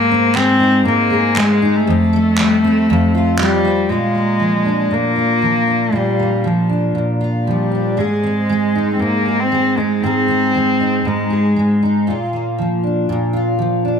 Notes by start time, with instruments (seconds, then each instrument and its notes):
Already playing: steel-string acoustic guitar G#2, cello A#3
0.11 steel-string acoustic guitar C4
0.35 steel-string acoustic guitar G#3, cello C4, clap
0.60 steel-string acoustic guitar D#4
0.85 steel-string acoustic guitar G#2, cello A#3
1.10 steel-string acoustic guitar G#4
1.36 steel-string acoustic guitar G#3, cello G#3, clap
1.62 steel-string acoustic guitar D#4
1.76 cello A3
1.87 steel-string acoustic guitar F2
2.13 steel-string acoustic guitar A3
2.38 steel-string acoustic guitar G3, clap
2.64 steel-string acoustic guitar C4
2.90 steel-string acoustic guitar F2
3.15 steel-string acoustic guitar F4
3.39 steel-string acoustic guitar G3, cello G3, clap
3.65 steel-string acoustic guitar C4
3.89 steel-string acoustic guitar A#2 F4, cello G#3
4.15 steel-string acoustic guitar A#3
4.40 steel-string acoustic guitar F3
4.65 steel-string acoustic guitar D4
4.91 steel-string acoustic guitar A#2, cello A#3
5.16 steel-string acoustic guitar F4
5.42 steel-string acoustic guitar F3
5.67 steel-string acoustic guitar D4
5.92 steel-string acoustic guitar A#2 F4, cello G3
6.19 steel-string acoustic guitar A#3
6.44 steel-string acoustic guitar F3, cello F3
6.69 steel-string acoustic guitar D4
6.95 steel-string acoustic guitar A#2
7.21 steel-string acoustic guitar F4
7.47 steel-string acoustic guitar F3, cello G3
7.71 steel-string acoustic guitar D4
7.97 steel-string acoustic guitar G#2 G#4, cello G#3
8.23 steel-string acoustic guitar C4
8.49 steel-string acoustic guitar G#3
8.75 steel-string acoustic guitar D#4
8.93 cello C4
8.99 steel-string acoustic guitar G#2, cello A#3
9.26 steel-string acoustic guitar G#4
9.40 cello C4
9.52 steel-string acoustic guitar G#3
9.77 cello G#3, steel-string acoustic guitar D#4
10.03 steel-string acoustic guitar G#2 G#4, cello C4
10.28 steel-string acoustic guitar C4
10.55 steel-string acoustic guitar G#3
10.80 steel-string acoustic guitar D#4
11.05 steel-string acoustic guitar G#2, cello G#3
11.30 steel-string acoustic guitar G#4
11.56 steel-string acoustic guitar G#3
11.82 steel-string acoustic guitar D#4
12.07 steel-string acoustic guitar A#2 F4
12.33 steel-string acoustic guitar A#3
12.58 steel-string acoustic guitar F3
12.83 steel-string acoustic guitar D4
13.09 steel-string acoustic guitar A#2
13.33 steel-string acoustic guitar F4
13.59 steel-string acoustic guitar F3
13.85 steel-string acoustic guitar D4